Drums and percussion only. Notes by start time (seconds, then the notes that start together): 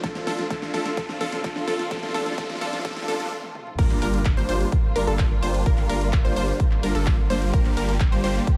0.04 kick, snare, closed hi-hat
0.15 snare, closed hi-hat
0.27 snare, open hi-hat
0.39 snare, closed hi-hat
0.50 kick, snare, closed hi-hat
0.62 snare
0.74 snare, open hi-hat
0.86 snare, closed hi-hat
0.97 kick, snare, closed hi-hat
1.09 snare
1.21 snare, open hi-hat
1.32 snare, closed hi-hat
1.44 kick, snare, closed hi-hat
1.56 snare
1.68 snare, open hi-hat
1.79 snare, closed hi-hat
1.91 kick, snare, closed hi-hat
1.97 snare
2.03 snare, closed hi-hat
2.09 snare
2.14 snare, open hi-hat
2.20 snare
2.26 snare, closed hi-hat
2.32 snare
2.38 kick, snare, closed hi-hat
2.44 snare
2.50 snare, closed hi-hat
2.55 snare
2.61 snare, open hi-hat
2.67 snare
2.73 snare, closed hi-hat
2.79 snare
2.85 kick, snare, closed hi-hat
2.91 snare
2.96 snare, closed hi-hat
3.02 snare
3.08 snare, open hi-hat
3.14 snare
3.20 snare, closed hi-hat
3.26 snare
3.32 high tom
3.43 high tom
3.55 mid tom
3.67 mid tom
3.79 kick, closed hi-hat, crash
3.90 clap, closed hi-hat
4.02 open hi-hat
4.14 closed hi-hat
4.25 kick, clap, closed hi-hat
4.49 open hi-hat
4.61 closed hi-hat
4.72 kick, closed hi-hat
4.96 open hi-hat
5.07 closed hi-hat
5.19 kick, clap, closed hi-hat
5.43 open hi-hat
5.54 closed hi-hat
5.66 kick, closed hi-hat
5.78 clap, closed hi-hat
5.89 open hi-hat
6.01 closed hi-hat
6.13 kick, clap, closed hi-hat
6.36 open hi-hat
6.48 closed hi-hat
6.60 kick, closed hi-hat
6.71 clap
6.83 open hi-hat
6.95 closed hi-hat
7.06 kick, clap, closed hi-hat
7.30 open hi-hat
7.42 closed hi-hat
7.53 kick, closed hi-hat
7.65 clap, closed hi-hat
7.77 open hi-hat
7.89 closed hi-hat
8.00 kick, clap, closed hi-hat
8.24 open hi-hat
8.36 closed hi-hat
8.47 kick, closed hi-hat